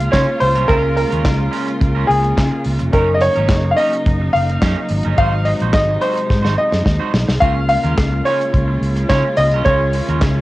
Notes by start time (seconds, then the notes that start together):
Already playing: C#3 G#3 A#3 C#4 F4 A#4 F5
0.00 closed hi-hat
0.11 C#3 C#4 F4 A#4 C#5, kick, snare, clap, closed hi-hat
0.26 muted clean electric guitar stroke
0.39 C#2 C5, muted clean electric guitar stroke, open hi-hat
0.55 C2 C#4 F4 A#4, closed hi-hat
0.67 C#2 C#3 C#4 F4 A#4, kick, closed hi-hat
0.83 muted clean electric guitar stroke
0.95 A#4, muted clean electric guitar stroke, open hi-hat
1.10 D#2 C#4 F4 A#4, closed hi-hat
1.24 C#2, muted clean electric guitar stroke, kick, snare, clap, closed hi-hat
1.38 muted clean electric guitar stroke
1.51 C#4 F4 A#4, open hi-hat
1.67 muted clean electric guitar stroke, closed hi-hat
1.80 C#2, muted clean electric guitar stroke, kick, closed hi-hat
1.95 C#4 F4 A#4
2.07 C#2 G#4, muted clean electric guitar stroke, open hi-hat
2.23 muted clean electric guitar stroke, closed hi-hat
2.37 C#3, muted clean electric guitar stroke, kick, snare, clap, closed hi-hat
2.52 muted clean electric guitar stroke
2.65 C#2, open hi-hat
2.79 F1, muted clean electric guitar stroke, closed hi-hat
2.91 F#1 F#3 C#4 D#4 A#4, kick, closed hi-hat
3.08 muted clean electric guitar stroke
3.14 D#5
3.21 C#5, muted clean electric guitar stroke, open hi-hat
3.36 G#1 C#4 D#4 A#4, closed hi-hat
3.49 F#1, muted clean electric guitar stroke, kick, snare, clap, closed hi-hat
3.65 muted clean electric guitar stroke
3.71 F5
3.77 C#4 D#4 A#4 D#5, open hi-hat
3.93 muted clean electric guitar stroke, closed hi-hat
4.06 F#1, muted clean electric guitar stroke, kick, closed hi-hat
4.22 muted clean electric guitar stroke
4.33 F#1 F5, open hi-hat
4.50 muted clean electric guitar stroke, closed hi-hat
4.62 F#2 C#4 D#4 A#4, kick, snare, clap, closed hi-hat
4.78 muted clean electric guitar stroke
4.89 G#1, muted clean electric guitar stroke, open hi-hat
5.03 G1 C#4 D#4 A#4, closed hi-hat
5.16 G#1 C3 G#3 D#4 F#4 C5 F5, kick, closed hi-hat
5.20 C5
5.34 muted clean electric guitar stroke
5.45 D#5, muted clean electric guitar stroke, open hi-hat
5.60 A#1 D#4 F#4 C5, closed hi-hat
5.73 G#1 D#5, muted clean electric guitar stroke, kick, snare, clap, closed hi-hat
5.90 muted clean electric guitar stroke
6.01 D#4 F#4 C5, open hi-hat
6.16 muted clean electric guitar stroke, closed hi-hat
6.29 G#2, muted clean electric guitar stroke, kick, snare
6.43 G#1 D#4 F#4 C5, snare
6.56 D#5, muted clean electric guitar stroke
6.71 F#2, muted clean electric guitar stroke, snare
6.85 D#2, muted clean electric guitar stroke, kick, snare
7.00 D#4 F#4 C5
7.13 B1, muted clean electric guitar stroke, snare
7.28 C2, muted clean electric guitar stroke, snare
7.40 C#2 C#3 G#3 A#3 C#4 F4 A#4 F5, kick, closed hi-hat
7.55 muted clean electric guitar stroke
7.68 F5, muted clean electric guitar stroke, open hi-hat
7.84 D#2 C#4 F4 A#4, closed hi-hat
7.97 C#2, muted clean electric guitar stroke, kick, snare, clap, closed hi-hat
8.12 muted clean electric guitar stroke
8.25 C#4 F4 A#4 C#5, open hi-hat
8.39 muted clean electric guitar stroke, closed hi-hat
8.53 C#2, muted clean electric guitar stroke, kick, closed hi-hat
8.68 muted clean electric guitar stroke
8.81 C#2, open hi-hat
8.96 muted clean electric guitar stroke, closed hi-hat
9.09 C#3 C#4 F4 A#4 C#5, kick, snare, clap, closed hi-hat
9.25 muted clean electric guitar stroke
9.37 C#2 D#5, muted clean electric guitar stroke, open hi-hat
9.51 C2 F4 A#4, closed hi-hat
9.56 C#4
9.65 C#2 C#3 C#4 F4 A#4 C#5, kick, closed hi-hat
9.80 muted clean electric guitar stroke
9.93 muted clean electric guitar stroke, open hi-hat
10.08 D#2 C#4 F4 A#4, closed hi-hat
10.21 C#2, muted clean electric guitar stroke, kick, snare, clap, closed hi-hat
10.37 muted clean electric guitar stroke